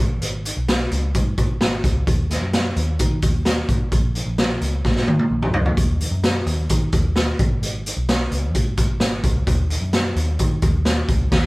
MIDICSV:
0, 0, Header, 1, 3, 480
1, 0, Start_track
1, 0, Key_signature, -6, "minor"
1, 0, Tempo, 462606
1, 225, Time_signature, 4, 2, 24, 8
1, 11891, End_track
2, 0, Start_track
2, 0, Title_t, "Picked electric bass"
2, 0, Program_c, 0, 34
2, 0, Note_on_c, 0, 32, 90
2, 188, Note_off_c, 0, 32, 0
2, 226, Note_on_c, 0, 32, 104
2, 532, Note_off_c, 0, 32, 0
2, 589, Note_on_c, 0, 35, 90
2, 894, Note_off_c, 0, 35, 0
2, 948, Note_on_c, 0, 37, 96
2, 1188, Note_on_c, 0, 44, 97
2, 1204, Note_off_c, 0, 37, 0
2, 1392, Note_off_c, 0, 44, 0
2, 1428, Note_on_c, 0, 32, 88
2, 1632, Note_off_c, 0, 32, 0
2, 1670, Note_on_c, 0, 32, 96
2, 1873, Note_off_c, 0, 32, 0
2, 1908, Note_on_c, 0, 37, 90
2, 2112, Note_off_c, 0, 37, 0
2, 2148, Note_on_c, 0, 39, 102
2, 2454, Note_off_c, 0, 39, 0
2, 2507, Note_on_c, 0, 42, 86
2, 2814, Note_off_c, 0, 42, 0
2, 2868, Note_on_c, 0, 39, 92
2, 3073, Note_off_c, 0, 39, 0
2, 3108, Note_on_c, 0, 51, 106
2, 3312, Note_off_c, 0, 51, 0
2, 3347, Note_on_c, 0, 39, 85
2, 3756, Note_off_c, 0, 39, 0
2, 3825, Note_on_c, 0, 32, 91
2, 4031, Note_off_c, 0, 32, 0
2, 4063, Note_on_c, 0, 34, 100
2, 4372, Note_off_c, 0, 34, 0
2, 4424, Note_on_c, 0, 34, 85
2, 4732, Note_off_c, 0, 34, 0
2, 4785, Note_on_c, 0, 37, 92
2, 4991, Note_off_c, 0, 37, 0
2, 5027, Note_on_c, 0, 46, 96
2, 5232, Note_off_c, 0, 46, 0
2, 5267, Note_on_c, 0, 44, 92
2, 5472, Note_off_c, 0, 44, 0
2, 5505, Note_on_c, 0, 34, 86
2, 5711, Note_off_c, 0, 34, 0
2, 5743, Note_on_c, 0, 37, 96
2, 5950, Note_off_c, 0, 37, 0
2, 5986, Note_on_c, 0, 39, 96
2, 6294, Note_off_c, 0, 39, 0
2, 6344, Note_on_c, 0, 42, 88
2, 6652, Note_off_c, 0, 42, 0
2, 6704, Note_on_c, 0, 39, 95
2, 6911, Note_off_c, 0, 39, 0
2, 6950, Note_on_c, 0, 51, 97
2, 7154, Note_off_c, 0, 51, 0
2, 7188, Note_on_c, 0, 39, 89
2, 7597, Note_off_c, 0, 39, 0
2, 7671, Note_on_c, 0, 32, 90
2, 7874, Note_off_c, 0, 32, 0
2, 7904, Note_on_c, 0, 32, 100
2, 8212, Note_off_c, 0, 32, 0
2, 8266, Note_on_c, 0, 35, 85
2, 8573, Note_off_c, 0, 35, 0
2, 8625, Note_on_c, 0, 37, 91
2, 8869, Note_off_c, 0, 37, 0
2, 8869, Note_on_c, 0, 44, 97
2, 9073, Note_off_c, 0, 44, 0
2, 9106, Note_on_c, 0, 32, 91
2, 9311, Note_off_c, 0, 32, 0
2, 9343, Note_on_c, 0, 32, 94
2, 9549, Note_off_c, 0, 32, 0
2, 9584, Note_on_c, 0, 37, 85
2, 9790, Note_off_c, 0, 37, 0
2, 9822, Note_on_c, 0, 39, 112
2, 10131, Note_off_c, 0, 39, 0
2, 10180, Note_on_c, 0, 42, 88
2, 10490, Note_off_c, 0, 42, 0
2, 10537, Note_on_c, 0, 39, 93
2, 10745, Note_off_c, 0, 39, 0
2, 10784, Note_on_c, 0, 51, 102
2, 10990, Note_off_c, 0, 51, 0
2, 11023, Note_on_c, 0, 39, 97
2, 11433, Note_off_c, 0, 39, 0
2, 11501, Note_on_c, 0, 37, 89
2, 11708, Note_off_c, 0, 37, 0
2, 11744, Note_on_c, 0, 39, 99
2, 11891, Note_off_c, 0, 39, 0
2, 11891, End_track
3, 0, Start_track
3, 0, Title_t, "Drums"
3, 224, Note_on_c, 9, 42, 83
3, 328, Note_off_c, 9, 42, 0
3, 469, Note_on_c, 9, 42, 70
3, 573, Note_off_c, 9, 42, 0
3, 709, Note_on_c, 9, 42, 73
3, 711, Note_on_c, 9, 38, 117
3, 812, Note_off_c, 9, 42, 0
3, 814, Note_off_c, 9, 38, 0
3, 949, Note_on_c, 9, 42, 70
3, 1053, Note_off_c, 9, 42, 0
3, 1188, Note_on_c, 9, 42, 82
3, 1192, Note_on_c, 9, 36, 89
3, 1292, Note_off_c, 9, 42, 0
3, 1296, Note_off_c, 9, 36, 0
3, 1427, Note_on_c, 9, 42, 80
3, 1431, Note_on_c, 9, 36, 86
3, 1531, Note_off_c, 9, 42, 0
3, 1535, Note_off_c, 9, 36, 0
3, 1668, Note_on_c, 9, 38, 108
3, 1675, Note_on_c, 9, 42, 87
3, 1771, Note_off_c, 9, 38, 0
3, 1779, Note_off_c, 9, 42, 0
3, 1909, Note_on_c, 9, 36, 94
3, 1911, Note_on_c, 9, 42, 78
3, 2013, Note_off_c, 9, 36, 0
3, 2015, Note_off_c, 9, 42, 0
3, 2150, Note_on_c, 9, 36, 99
3, 2150, Note_on_c, 9, 42, 82
3, 2254, Note_off_c, 9, 36, 0
3, 2254, Note_off_c, 9, 42, 0
3, 2387, Note_on_c, 9, 38, 40
3, 2391, Note_on_c, 9, 42, 72
3, 2491, Note_off_c, 9, 38, 0
3, 2495, Note_off_c, 9, 42, 0
3, 2628, Note_on_c, 9, 42, 73
3, 2629, Note_on_c, 9, 38, 117
3, 2731, Note_off_c, 9, 42, 0
3, 2733, Note_off_c, 9, 38, 0
3, 2868, Note_on_c, 9, 42, 76
3, 2972, Note_off_c, 9, 42, 0
3, 3103, Note_on_c, 9, 42, 89
3, 3111, Note_on_c, 9, 36, 93
3, 3207, Note_off_c, 9, 42, 0
3, 3215, Note_off_c, 9, 36, 0
3, 3343, Note_on_c, 9, 42, 83
3, 3348, Note_on_c, 9, 36, 93
3, 3446, Note_off_c, 9, 42, 0
3, 3452, Note_off_c, 9, 36, 0
3, 3583, Note_on_c, 9, 38, 102
3, 3590, Note_on_c, 9, 42, 90
3, 3687, Note_off_c, 9, 38, 0
3, 3694, Note_off_c, 9, 42, 0
3, 3825, Note_on_c, 9, 42, 76
3, 3826, Note_on_c, 9, 36, 90
3, 3929, Note_off_c, 9, 42, 0
3, 3930, Note_off_c, 9, 36, 0
3, 4066, Note_on_c, 9, 36, 101
3, 4066, Note_on_c, 9, 42, 79
3, 4169, Note_off_c, 9, 42, 0
3, 4170, Note_off_c, 9, 36, 0
3, 4307, Note_on_c, 9, 42, 70
3, 4411, Note_off_c, 9, 42, 0
3, 4545, Note_on_c, 9, 42, 70
3, 4547, Note_on_c, 9, 38, 103
3, 4649, Note_off_c, 9, 42, 0
3, 4651, Note_off_c, 9, 38, 0
3, 4788, Note_on_c, 9, 42, 72
3, 4892, Note_off_c, 9, 42, 0
3, 5028, Note_on_c, 9, 38, 56
3, 5030, Note_on_c, 9, 36, 89
3, 5132, Note_off_c, 9, 38, 0
3, 5134, Note_off_c, 9, 36, 0
3, 5148, Note_on_c, 9, 38, 55
3, 5252, Note_off_c, 9, 38, 0
3, 5270, Note_on_c, 9, 48, 74
3, 5374, Note_off_c, 9, 48, 0
3, 5387, Note_on_c, 9, 48, 67
3, 5491, Note_off_c, 9, 48, 0
3, 5628, Note_on_c, 9, 45, 69
3, 5732, Note_off_c, 9, 45, 0
3, 5745, Note_on_c, 9, 43, 98
3, 5848, Note_off_c, 9, 43, 0
3, 5868, Note_on_c, 9, 43, 89
3, 5972, Note_off_c, 9, 43, 0
3, 5989, Note_on_c, 9, 36, 107
3, 5991, Note_on_c, 9, 42, 85
3, 6093, Note_off_c, 9, 36, 0
3, 6094, Note_off_c, 9, 42, 0
3, 6231, Note_on_c, 9, 42, 66
3, 6335, Note_off_c, 9, 42, 0
3, 6469, Note_on_c, 9, 42, 71
3, 6471, Note_on_c, 9, 38, 113
3, 6572, Note_off_c, 9, 42, 0
3, 6574, Note_off_c, 9, 38, 0
3, 6708, Note_on_c, 9, 42, 72
3, 6812, Note_off_c, 9, 42, 0
3, 6945, Note_on_c, 9, 42, 83
3, 6952, Note_on_c, 9, 36, 92
3, 7049, Note_off_c, 9, 42, 0
3, 7056, Note_off_c, 9, 36, 0
3, 7184, Note_on_c, 9, 42, 84
3, 7190, Note_on_c, 9, 36, 94
3, 7287, Note_off_c, 9, 42, 0
3, 7294, Note_off_c, 9, 36, 0
3, 7426, Note_on_c, 9, 38, 96
3, 7433, Note_on_c, 9, 42, 90
3, 7529, Note_off_c, 9, 38, 0
3, 7537, Note_off_c, 9, 42, 0
3, 7669, Note_on_c, 9, 42, 78
3, 7671, Note_on_c, 9, 36, 103
3, 7773, Note_off_c, 9, 42, 0
3, 7775, Note_off_c, 9, 36, 0
3, 7914, Note_on_c, 9, 42, 86
3, 8018, Note_off_c, 9, 42, 0
3, 8156, Note_on_c, 9, 42, 67
3, 8260, Note_off_c, 9, 42, 0
3, 8390, Note_on_c, 9, 42, 73
3, 8392, Note_on_c, 9, 38, 113
3, 8494, Note_off_c, 9, 42, 0
3, 8496, Note_off_c, 9, 38, 0
3, 8628, Note_on_c, 9, 42, 76
3, 8732, Note_off_c, 9, 42, 0
3, 8867, Note_on_c, 9, 42, 88
3, 8872, Note_on_c, 9, 36, 90
3, 8971, Note_off_c, 9, 42, 0
3, 8976, Note_off_c, 9, 36, 0
3, 9103, Note_on_c, 9, 42, 85
3, 9108, Note_on_c, 9, 36, 89
3, 9207, Note_off_c, 9, 42, 0
3, 9212, Note_off_c, 9, 36, 0
3, 9339, Note_on_c, 9, 38, 101
3, 9346, Note_on_c, 9, 42, 90
3, 9442, Note_off_c, 9, 38, 0
3, 9449, Note_off_c, 9, 42, 0
3, 9582, Note_on_c, 9, 42, 78
3, 9585, Note_on_c, 9, 36, 95
3, 9685, Note_off_c, 9, 42, 0
3, 9689, Note_off_c, 9, 36, 0
3, 9825, Note_on_c, 9, 42, 85
3, 9826, Note_on_c, 9, 36, 103
3, 9928, Note_off_c, 9, 42, 0
3, 9930, Note_off_c, 9, 36, 0
3, 10067, Note_on_c, 9, 42, 70
3, 10171, Note_off_c, 9, 42, 0
3, 10302, Note_on_c, 9, 42, 71
3, 10304, Note_on_c, 9, 38, 112
3, 10406, Note_off_c, 9, 42, 0
3, 10408, Note_off_c, 9, 38, 0
3, 10545, Note_on_c, 9, 42, 73
3, 10649, Note_off_c, 9, 42, 0
3, 10780, Note_on_c, 9, 42, 83
3, 10787, Note_on_c, 9, 36, 93
3, 10884, Note_off_c, 9, 42, 0
3, 10890, Note_off_c, 9, 36, 0
3, 11018, Note_on_c, 9, 42, 79
3, 11024, Note_on_c, 9, 36, 96
3, 11122, Note_off_c, 9, 42, 0
3, 11128, Note_off_c, 9, 36, 0
3, 11261, Note_on_c, 9, 38, 101
3, 11268, Note_on_c, 9, 42, 87
3, 11365, Note_off_c, 9, 38, 0
3, 11372, Note_off_c, 9, 42, 0
3, 11503, Note_on_c, 9, 36, 89
3, 11503, Note_on_c, 9, 42, 79
3, 11607, Note_off_c, 9, 36, 0
3, 11607, Note_off_c, 9, 42, 0
3, 11743, Note_on_c, 9, 38, 95
3, 11744, Note_on_c, 9, 36, 100
3, 11744, Note_on_c, 9, 49, 82
3, 11847, Note_off_c, 9, 38, 0
3, 11848, Note_off_c, 9, 36, 0
3, 11848, Note_off_c, 9, 49, 0
3, 11891, End_track
0, 0, End_of_file